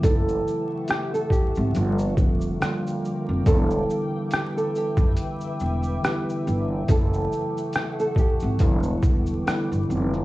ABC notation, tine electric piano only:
X:1
M:4/4
L:1/8
Q:"Swing 16ths" 1/4=70
K:Edor
V:1 name="Tine electric piano" clef=bass
[C,E,F,A,^DE]3 z [=D,=F,G,_B,=F]2 [D,F,G,B,F] z | [D,E,G,B,^DE]3 z3 [=D,E,G,B,E] z | [C,E,F,A,E]3 z [D,E,G,B,E]2 [D,E,G,B,E] z |]